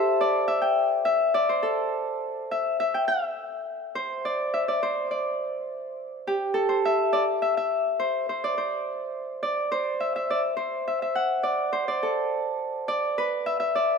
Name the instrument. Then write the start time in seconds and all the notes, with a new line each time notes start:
harp
Already playing: G4 A4 C5 E5
0.21 D5
0.48 E5
0.62 G5
1.05 E5
1.34 D5
1.49 C5
1.63 A4
2.51 E5
2.80 E5
2.94 G5
3.08 E5
3.95 C5
4.25 D5
4.54 E5
4.68 D5
4.83 C5
5.11 D5
6.27 G4
6.54 A4
6.69 C5
6.85 E5
7.13 D5
7.42 E5
7.57 E5
8.00 C5
8.29 C5
8.44 D5
8.58 C5
9.43 D5
9.72 C5
10.00 E5
10.16 E5
10.30 D5
10.57 C5
10.88 E5
11.02 E5
11.15 F#5
11.43 D5
11.73 C5
11.88 D5
12.03 A4
12.88 D5
13.18 B4
13.46 E5
13.60 E5
13.75 D5